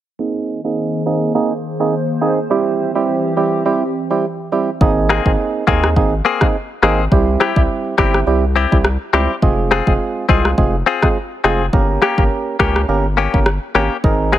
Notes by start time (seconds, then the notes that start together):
0.19 D#3 A#3 C4 D#4 G#4 C5
0.64 A#3 C4 D#4 G#4
1.06 A#3 C4 D#4 G#4
1.35 A#3 C4 D#4 G#4
1.80 A#3 C4 D#4 G#4
2.21 A#3 C4 D#4 G#4
2.50 E3 G3 C4 E4 G4
2.95 G3 C4 E4 G4
3.36 G3 C4 E4 G4
3.65 G3 C4 E4 G4
4.10 G3 C4 E4 G4
4.52 G3 C4 E4 G4
4.81 G#1 A#3 C4 D#4 G#4, kick
5.09 A#3 C4 G#4, cross-stick
5.26 G#1 A#3 C4 D#4 G#4, kick
5.67 D#2 A#3 C4 D#4 G#4, kick
5.84 cross-stick
5.96 G#1 A#3 C4 D#4 G#4, kick
6.25 A#3 C4 G#4
6.41 A#3 C4 D#4 G#4, kick, cross-stick
6.83 G#1 A#3 C4 D#4 G#4, cross-stick
7.12 C2 G3 C4 E4 G4, kick
7.40 C4 E4 G4, cross-stick
7.56 C2 G3 C4 E4 G4, kick
7.98 G1 G3 C4 E4 G4, kick, cross-stick
8.14 cross-stick
8.27 C2 G3 C4 E4 G4
8.56 C4 E4 G4
8.72 C2 G3 C4 E4 G4, kick
8.85 cross-stick
9.13 C#2 G3 C4 E4 G4, cross-stick
9.42 F1 G#3 C4 F4 G#4, kick
9.71 C4 F4 G#4, cross-stick
9.87 F1 G#3 C4 F4 G#4, kick
10.29 C2 G#3 C4 F4 G#4, kick
10.45 cross-stick
10.58 F1 G#3 C4 F4 G#4, kick
10.86 C4 F4 G#4
11.03 G#3 C4 F4 G#4, kick, cross-stick
11.44 F1 G#3 C4 F4 G#4, cross-stick
11.73 G1 A#3 C#4 G4 A#4, kick
12.02 A#3 C#4 G4, cross-stick
12.18 G1 A#3 C#4 G4 A#4, kick
12.59 C#2 A#3 C#4 G4 A#4, kick, cross-stick
12.76 cross-stick
12.88 G1 A#3 C#4 G4 A#4
13.17 A#3 C#4 G4
13.33 G1 A#3 C#4 G4 A#4, kick
13.46 cross-stick
13.75 G#1 A#3 C#4 G4 A#4, cross-stick
14.04 G#1 C4 D#4 G#4 A#4, kick
14.32 A#3 C4 G#4, cross-stick